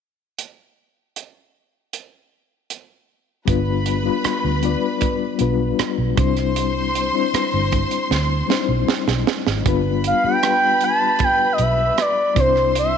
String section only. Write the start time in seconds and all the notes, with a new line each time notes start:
3.47 B4 B5
6.18 C5 C6
9.65 B4 B5
12.36 C5 C6